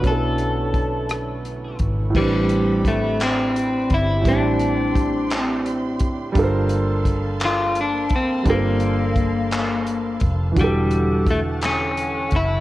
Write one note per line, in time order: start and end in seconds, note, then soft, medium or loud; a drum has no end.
0.00 2.09 B2 medium
0.00 2.11 D3 medium
0.00 2.10 F#3 medium
0.00 2.10 A3 medium
0.00 2.11 B3 medium
0.00 2.11 E4 medium
0.00 0.11 A4 medium
0.00 2.11 C#5 medium
0.00 kick loud
0.00 closed hi-hat medium
0.04 1.76 B1 medium
0.04 2.11 C#4 medium
0.04 2.12 D4 soft
0.04 1.77 A4 medium
0.09 2.13 E4 medium
0.09 2.14 A4 medium
0.38 closed hi-hat soft
0.74 kick medium
0.74 closed hi-hat soft
1.09 cross-stick loud
1.09 closed hi-hat medium
1.45 closed hi-hat soft
1.79 2.12 G#1 medium
1.79 kick medium
1.79 closed hi-hat soft
2.10 4.19 A2 medium
2.10 4.20 G3 medium
2.15 3.87 A1 loud
2.15 2.88 G3 medium
2.15 6.32 C4 medium
2.15 4.22 C4 medium
2.15 4.23 D4 medium
2.15 6.32 G4 medium
2.15 6.32 D5 medium
2.15 4.24 B5 medium
2.15 kick loud
2.15 crash medium
2.22 4.25 B4 medium
2.49 closed hi-hat medium
2.85 3.19 A3 medium
2.85 kick medium
2.85 closed hi-hat medium
3.20 3.94 C4 loud
3.20 clap loud
3.20 closed hi-hat medium
3.56 closed hi-hat medium
3.90 4.26 G1 medium
3.90 kick loud
3.90 closed hi-hat medium
3.94 4.28 E4 loud
4.21 6.30 A2 medium
4.21 6.30 G3 medium
4.21 6.34 C6 medium
4.21 kick loud
4.25 6.01 A1 loud
4.25 6.33 C4 medium
4.25 5.40 D4 medium
4.25 closed hi-hat medium
4.30 6.32 D4 medium
4.30 6.36 G4 medium
4.59 closed hi-hat soft
4.95 kick medium
4.95 closed hi-hat medium
5.30 clap loud
5.30 closed hi-hat medium
5.40 5.98 C4 medium
5.66 closed hi-hat medium
5.99 6.32 F#1 medium
5.99 kick medium
5.99 closed hi-hat medium
6.32 8.11 G1 loud
6.32 8.40 G3 medium
6.32 10.53 A#3 medium
6.32 8.41 D4 medium
6.32 10.53 C6 medium
6.32 kick loud
6.32 closed hi-hat medium
6.36 8.43 F4 medium
6.36 8.44 A4 medium
6.36 10.53 F5 medium
6.36 10.53 A5 medium
6.41 8.45 A#4 medium
6.41 8.46 C5 medium
6.69 closed hi-hat medium
7.06 kick medium
7.06 closed hi-hat medium
7.40 clap loud
7.40 closed hi-hat medium
7.45 7.79 F4 loud
7.75 closed hi-hat medium
7.81 8.15 D4 loud
8.09 8.43 F1 medium
8.09 kick loud
8.09 closed hi-hat medium
8.16 8.46 C4 medium
8.43 10.18 G1 loud
8.43 10.51 G3 medium
8.43 10.52 D4 medium
8.43 kick loud
8.43 closed hi-hat medium
8.47 10.19 A#3 medium
8.47 10.53 F4 medium
8.47 10.55 A4 medium
8.52 10.56 A#4 medium
8.52 10.57 C5 medium
8.80 closed hi-hat soft
9.16 kick medium
9.16 closed hi-hat medium
9.51 clap loud
9.51 closed hi-hat medium
9.87 closed hi-hat medium
10.20 10.54 F1 medium
10.20 kick loud
10.20 closed hi-hat medium
10.52 12.60 D3 medium
10.52 12.60 E3 medium
10.56 12.28 E1 loud
10.56 12.60 F#4 medium
10.56 12.60 A4 medium
10.56 12.60 F#5 medium
10.56 12.60 A5 medium
10.56 kick loud
10.56 closed hi-hat medium
10.60 11.25 G3 medium
10.60 12.60 G4 medium
10.60 12.60 A4 medium
10.91 closed hi-hat medium
11.27 11.40 A3 medium
11.27 kick medium
11.27 closed hi-hat medium
11.62 clap loud
11.62 closed hi-hat medium
11.66 12.36 C#4 loud
11.97 closed hi-hat medium
12.31 12.60 F#1 medium
12.31 kick loud
12.31 closed hi-hat medium
12.36 12.60 E4 loud